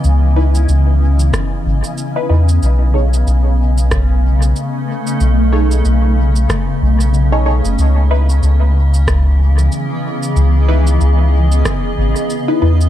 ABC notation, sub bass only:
X:1
M:4/4
L:1/16
Q:"Swing 16ths" 1/4=93
K:C#m
V:1 name="Sub bass" clef=bass
C,,4 C,,4 z2 G,,, z3 E,,2 | B,,,4 B,,,8 z4 | B,,,4 B,,,4 z2 B,,,4- B,,, F,,, | C,,4 C,,8 z4 |
C,,4 C,,4 z2 G,,, z3 E,,2 |]